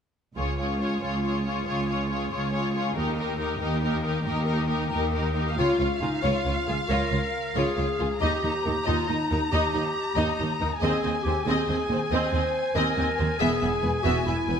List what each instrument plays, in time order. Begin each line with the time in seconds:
0.36 cello section C#2, double bass section C#2, viola section F4, violin section G#4 C#5
0.58 viola section F4, violin section G#4 C#5
0.80 viola section F4, violin section G#4 C#5
1.02 cello section C#2, viola section F4, violin section G#4 C#5
1.23 viola section F4, violin section G#4 C#5
1.44 viola section F4, violin section G#4 C#5
1.66 cello section C#2, viola section F4, violin section G#4 C#5
1.89 viola section F4, violin section G#4 C#5
2.10 viola section F4, violin section G#4 C#5
2.31 cello section C#2, viola section F4, violin section G#4 C#5
2.53 viola section F4, violin section G#4 C#5
2.74 viola section F4, violin section G#4 C#5
2.95 cello section D#2, double bass section D#2, viola section D#4, violin section G4 A#4
3.16 viola section D#4, violin section G4 A#4
3.38 viola section D#4, violin section G4 A#4
3.61 cello section D#2, viola section D#4, violin section G4 A#4
3.83 viola section D#4, violin section G4 A#4
4.04 viola section D#4, violin section G4 A#4
4.24 cello section D#2, viola section D#4, violin section G4 A#4
4.46 viola section D#4, violin section G4 A#4
4.68 viola section D#4, violin section G4 A#4
4.90 cello section D#2, viola section D#4, violin section G4 A#4
5.13 viola section D#4, violin section G4 A#4
5.35 viola section D#4, violin section G4 A#4
5.57 double bass section C#2, cello section C#2, clarinet F4, viola section F4, violin section C#5 F5
5.79 double bass section C#2, cello section C#2, viola section F4, violin section C#5
6.01 double bass section C#2, cello section C#2, clarinet D#4, viola section F4, violin section G#4
6.22 double bass section C#2, cello section C#2, clarinet F4, viola section F4, violin section C#5
6.46 double bass section C#2, cello section C#2, viola section F4, violin section C#5
6.67 double bass section C#2, cello section C#2, viola section F4, violin section G#4
6.89 double bass section C#2, cello section C#2, viola section F4, clarinet A#4, violin section C#5
7.12 double bass section C#2, cello section C#2, viola section F4, violin section C#5
7.55 double bass section C#2, cello section C#2, viola section F4, clarinet G#4, violin section C#5
7.77 double bass section C#2, cello section C#2, viola section F4, violin section C#5
7.99 cello section C#2, double bass section C#2, viola section F4, violin section G#4
8.21 cello section D#2, double bass section D#2, viola section D#4, clarinet G4, violin section D#5 A#5
8.43 cello section D#2, double bass section D#2, viola section D#4, violin section D#5
8.64 cello section D#2, double bass section D#2, viola section D#4, violin section A#4
8.84 viola section D#4, clarinet F4, violin section D#5
8.88 double bass section D#2, cello section D#2
9.06 cello section D#2, clarinet D#4, viola section D#4, violin section D#5
9.10 double bass section D#2
9.31 cello section D#2, double bass section D#2, viola section D#4, violin section A#4
9.52 cello section D#2, double bass section D#2, viola section D#4, clarinet G4, violin section D#5
9.73 cello section D#2, double bass section D#2, viola section D#4, violin section D#5
10.16 cello section D#2, double bass section D#2, viola section D#4, violin section D#5
10.37 cello section D#2, double bass section D#2, viola section D#4, violin section D#5
10.60 cello section D#2, double bass section D#2, viola section D#4, violin section A#4
10.80 cello section D#2, double bass section D#2, viola section C4, clarinet G#4, violin section D#5 G#5
11.03 double bass section D#2, cello section D#2, viola section C4, violin section D#5
11.23 double bass section D#2, cello section D#2, viola section C4, clarinet G4, violin section C5
11.45 cello section D#2, double bass section D#2, viola section C4, clarinet G#4, violin section D#5
11.68 cello section D#2, double bass section D#2, viola section C4, violin section D#5
11.90 double bass section D#2, cello section D#2, viola section C4, violin section C5
12.11 cello section D#2, double bass section D#2, viola section C4, clarinet C5, violin section D#5
12.33 cello section D#2, double bass section D#2, viola section C4, violin section D#5
12.75 cello section D#2, double bass section D#2, viola section C4, clarinet A#4, violin section D#5
12.96 cello section D#2, double bass section D#2, viola section C4, violin section D#5
13.19 cello section D#2, double bass section D#2, viola section C4, violin section C5
13.40 double bass section E1, cello section E2, viola section B3, clarinet G#4, violin section E5
13.60 double bass section E1, cello section E2, viola section B3, violin section E5
13.82 double bass section E1, cello section E2, viola section B3, violin section B4
14.03 double bass section E1, cello section E2, viola section B3, clarinet F#4, violin section E5
14.25 double bass section E1, cello section E2, viola section B3, clarinet E4, violin section E5
14.48 double bass section E1, cello section E2, viola section B3, violin section B4